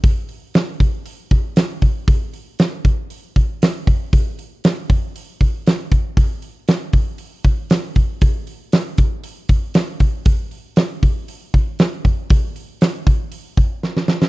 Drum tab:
HH |o-o-o-o-o-o-o-o-|o-o-o-o-o-o-o-o-|o-o-o-o-o-o-o-o-|o-o-o-o-o-o-o-o-|
SD |----o-------o---|----o-------o---|----o-------o---|----o-------o---|
BD |o-----o---o---o-|o-----o---o---o-|o-----o---o---o-|o-----o---o---o-|

HH |o-o-o-o-o-o-o-o-|o-o-o-o-o-o-o-o-|o-o-o-o-o-o-----|
SD |----o-------o---|----o-------o---|----o-------oooo|
BD |o-----o---o---o-|o-----o---o---o-|o-----o---o-----|